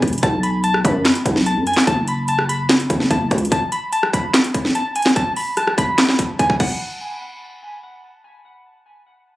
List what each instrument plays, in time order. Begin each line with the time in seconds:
0.02 808-style bass E1, kick, closed hi-hat
0.08 closed hi-hat
0.13 closed hi-hat
0.18 closed hi-hat
0.23 808-style bass B1, clean electric guitar A5, kick, closed hi-hat
0.43 clean electric guitar B5, closed hi-hat
0.64 clean electric guitar A5, closed hi-hat
0.74 cross-stick
0.85 808-style bass F#2, clean electric guitar B5, kick, closed hi-hat
1.05 snare, clap, closed hi-hat
1.15 closed hi-hat
1.26 808-style bass B1, kick, closed hi-hat
1.36 snare
1.46 clean electric guitar A5, closed hi-hat
1.56 808-style bass F#2
1.67 clean electric guitar G#5, closed hi-hat
1.74 snare, clap, closed hi-hat
1.80 closed hi-hat
1.87 808-style bass F#1, clean electric guitar A5, kick, closed hi-hat
2.08 clean electric guitar B5, closed hi-hat
2.28 clean electric guitar A5, closed hi-hat
2.39 cross-stick
2.49 clean electric guitar B5, closed hi-hat
2.69 snare, clap, closed hi-hat
2.80 closed hi-hat
2.90 808-style bass F#1, kick, closed hi-hat
3.00 snare
3.11 808-style bass F#1, clean electric guitar A5, kick, closed hi-hat
3.31 808-style bass C#2, kick, closed hi-hat
3.38 closed hi-hat
3.45 closed hi-hat
3.52 clean electric guitar A5, kick, closed hi-hat
3.72 clean electric guitar B5, closed hi-hat
3.92 clean electric guitar A5, closed hi-hat
4.03 cross-stick
4.13 clean electric guitar B5, kick, closed hi-hat
4.34 snare, clap, closed hi-hat
4.44 closed hi-hat
4.54 kick, closed hi-hat
4.65 snare
4.75 clean electric guitar A5, closed hi-hat
4.96 clean electric guitar G#5, closed hi-hat
5.02 snare, clap, closed hi-hat
5.09 closed hi-hat
5.16 clean electric guitar A5, kick, closed hi-hat
5.36 clean electric guitar B5, open hi-hat
5.57 clean electric guitar A5, cross-stick, closed hi-hat
5.67 cross-stick
5.78 clean electric guitar B5, kick, closed hi-hat
5.98 snare, clap, closed hi-hat
6.09 snare, clap
6.19 kick, closed hi-hat
6.39 clean electric guitar G#5, kick, closed hi-hat
6.50 kick
6.60 clean electric guitar F#5, kick, crash